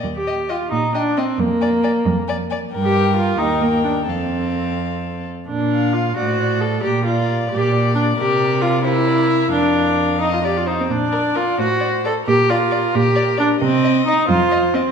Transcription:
<<
  \new Staff \with { instrumentName = "Violin" } { \time 6/8 \key bes \mixolydian \tempo 4. = 89 r8 g''8 g''8 r8 g''8 g''8 | r8 aes''8 aes''8 r8 aes''8 aes''8 | \key bes \major g''4. g''4. | f''2~ f''8 r8 |
r4. c''4. | bes'4. d''4.~ | d''4. c''8 d''8 e''8 | f''2~ f''16 r8. |
d''4. c''4. | bes'2. | ees''4. c''4. | }
  \new Staff \with { instrumentName = "Violin" } { \time 6/8 \key bes \mixolydian r8 ees''8 ees''8 r8 ees''8 ees''8 | r8 d''8 d''8 r8 d''8 d''8 | \key bes \major bes'4. bes'4. | a'2~ a'8 r8 |
r8 f''4 d''8 d''4 | r8 d''4. d''4 | bes'4. bes'4. | bes'4. ees''8 d''8 c''8 |
r8 bes'8 bes'8 r8 d''8 d''8 | r8 d''8 d''8 r8 d''8 d''8 | r8 ees''8 ees''8 r8 ees''8 ees''8 | }
  \new Staff \with { instrumentName = "Viola" } { \time 6/8 \key bes \mixolydian r16 g'8. f'8 ees'8 d'8 c'8 | bes2~ bes8 r8 | \key bes \major r16 g'8. f'8 ees'8 bes8 d'8 | c'2~ c'8 r8 |
d'4 f'8 fis'4 a'8 | g'8 f'4 g'4 d'8 | g'4 f'8 e'4. | d'4. ees'16 f'16 g'16 f'16 ees'16 c'16 |
d'4 f'8 fis'4 a'8 | g'8 f'4 g'4 d'8 | c'4 ees'8 f'4 c'8 | }
  \new Staff \with { instrumentName = "Cello" } { \clef bass \time 6/8 \key bes \mixolydian ees,4. bes,4. | f,4. f,4. | \key bes \major g,4. ees,4. | f,2~ f,8 r8 |
bes,4. a,4. | bes,4. bes,4. | c2. | f,2~ f,8 r8 |
bes,4. a,4. | bes,4. bes,4. | c4. f,4. | }
>>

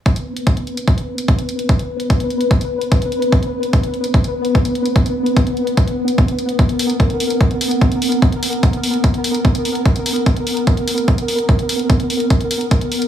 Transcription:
<<
  \new Staff \with { instrumentName = "Synth texture" } { \time 4/4 \key b \lydian \tempo 4 = 147 <b b'>1~ | <b b'>1~ | <b b'>1~ | <b b'>1 |
ais'1~ | ais'1~ | ais'1~ | ais'1 | }
  \new DrumStaff \with { instrumentName = "Drums" } \drummode { \time 4/4 <hh bd>16 hh8 hh16 <hh bd>16 hh16 hh16 hh16 <hh bd>16 hh8 hh16 <hh bd>16 hh16 hh16 hh16 | <hh bd>16 hh8 hh16 <hh bd>16 hh16 hh16 hh16 <hh bd>16 hh8 hh16 <hh bd>16 hh16 hh16 hh16 | <hh bd>16 hh8 hh16 <hh bd>16 hh16 hh16 hh16 <hh bd>16 hh8 hh16 <hh bd>16 hh16 hh16 hh16 | <hh bd>16 hh8 hh16 <hh bd>16 hh16 hh16 hh16 <hh bd>16 hh8 hh16 <hh bd>16 hh16 hh16 hh16 |
<hh bd>16 hh16 hho16 hh16 <hh bd>16 hh16 hho16 hh16 <hh bd>16 hh16 hho16 hh16 <hh bd>16 hh16 hho16 hh16 | <hh bd>16 hh16 hho16 hh16 <hh bd>16 hh16 hho16 hh16 <hh bd>16 hh16 hho16 hh16 <hh bd>16 hh16 hho16 hh16 | <hh bd>16 hh16 hho16 hh16 <hh bd>16 hh16 hho16 hh16 <hh bd>16 hh16 hho16 hh16 <hh bd>16 hh16 hho16 hh16 | <hh bd>16 hh16 hho16 hh16 <hh bd>16 hh16 hho16 hh16 <hh bd>16 hh16 hho16 hh16 <hh bd>16 hh16 hho16 hh16 | }
>>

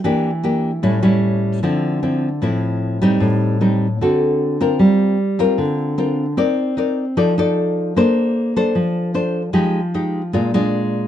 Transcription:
\new Staff \with { instrumentName = "Nylon-string guitar" } { \time 4/4 \key d \minor \tempo 4 = 152 << { <bes d' g'>8 r8 <bes d' g'>8 r8 <g cis' e'>8 <g cis' e'>4. | <f c' e'>4 <f c' e'>8 r8 <f c' e'>4. <g c' ees'>8~ | <g c' ees'>4 <g c' ees'>8 r8 <c' fis' a'>4. <c' f' bes'>8~ | \key g \minor <c' f' bes'>4 r8 <c' f' bes'>4. <c' f' bes'>8 r8 |
<ees' bes' d''>4 <ees' bes' d''>8 r8 <ees' a' d''>8 <ees' a' d''>4. | <d' a' c''>4. <d' a' c''>4. <d' a' c''>8 r8 | <aes ees' g'>8 r8 <aes ees' g'>8 r8 <aes d' f'>8 <aes d' f'>4. | } \\ { e2 a,2 | d2 a,2 | a,2 d2 | g2 d2 |
c'2 f2 | bes2 f2 | f2 bes,2 | } >> }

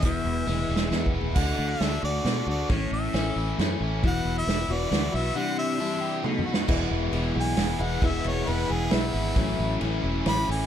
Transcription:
<<
  \new Staff \with { instrumentName = "Harmonica" } { \time 3/4 \key e \major \tempo 4 = 135 e''2~ e''8 r8 | \key d \lydian fis''8. e''8. d''4 d''8 | cis''8 e''4. r4 | fis''8. e''8. d''4 e''8 |
fis''8 e''4. r4 | \key e \major r4. gis''4 fis''8 | e''8 cis''8 b'8 gis'8 e'4~ | e'4 r4 b''8 gis''8 | }
  \new Staff \with { instrumentName = "String section" } { \time 3/4 \key e \major << { <e' b'>2. | \key d \lydian r2. | r2. | <fis' b' b''>2. |
<g' d'' c'''>2 <a' dis'' b''>4 | \key e \major r2. | r2. | r2. | } \\ { gis''2. | r2. | r2. | e''2.~ |
e''2 fis''4 | r2. | r2. | r2. | } >> }
  \new Staff \with { instrumentName = "Overdriven electric guitar" } { \time 3/4 \key e \major e,4 gis8 e8 b8 e'8 | \key d \lydian d4 d'8 fis'8 d'8 fis'8 | a,4 cis'8 e'8 cis'8 e'8 | e,4 e'8 fis'8 e'8 fis'8 |
c4 d'8 g'8 b,8 fis'8 | \key e \major <e, b, e gis b e'>4 <e, b, e gis b e'>8 <e gis b e'>4 <e gis b e'>8 | <e, b, e gis b e'>4 <e, b, e gis b e'>8 <e gis b e'>4 <e gis b e'>8 | <a, e a cis' e'>4 <a, e a cis' e'>8 <a cis' e'>4 <a cis' e'>8 | }
  \new Staff \with { instrumentName = "Steel-string acoustic guitar" } { \time 3/4 \key e \major <e, b, e gis b e'>4 <e gis b e'>4 <e gis b e'>4 | \key d \lydian <d a d' fis'>4 <d a d' fis'>8 <a d' fis'>8 <d a d' fis'>8 <a d' fis'>8 | <a, e a cis' e'>4 <e a cis' e'>4 <e a cis' e'>4 | <e, b, e b e' fis'>4 <e b e' fis'>8 <e b e' fis'>8 <e b e' fis'>8 <e b e' fis'>8 |
<c e g d' e'>4 <e g d' e'>4 <fis a dis' fis'>4 | \key e \major <e, b, e gis b e'>4 <e gis b e'>4 <e gis b e'>8 <e gis b e'>8 | <e, b, e gis b e'>4 <e gis b e'>4 <e gis b e'>4 | <a, fis a cis' e'>4 <fis a cis' e'>4 <fis a cis' e'>8 <a cis' e'>8 | }
  \new Staff \with { instrumentName = "Fingered electric bass" } { \clef bass \time 3/4 \key e \major e,,8 e,,8 e,,8 e,,8 e,8 e,,8 | \key d \lydian d,8 d,8 d,8 d,8 b,8 d,8 | a,,8 a,,8 a,,8 a,,8 fis,8 a,,8 | e,,8 e,,8 e,,8 e,,8 d,8 b,,8 |
r2. | \key e \major e,,8 e,,8 e,,8 b,,8 e,,8 e,,8 | e,,8 e,,8 e,,8 e,,8 b,,8 gis,,8 | a,,8 a,,8 a,,8 e,,8 a,,8 a,,8 | }
  \new DrumStaff \with { instrumentName = "Drums" } \drummode { \time 3/4 <hh bd>4 \tuplet 3/2 { tommh8 r8 sn8 sn8 bd8 tomfh8 } | <cymc bd>4 <cymr sn>4 <cymr sn>4 | <bd cymr>4 <cymr sn>4 <cymr sn>4 | <bd cymr>4 <cymr sn>4 <cymr sn>4 |
r4 r4 \tuplet 3/2 { tommh8 toml8 sn8 } | <cymc bd>4 cymr4 <cymr sn>4 | <bd cymr>8 cymr8 cymr4 <cymr sn>4 | <bd cymr>4 cymr4 <cymr sn>4 | }
>>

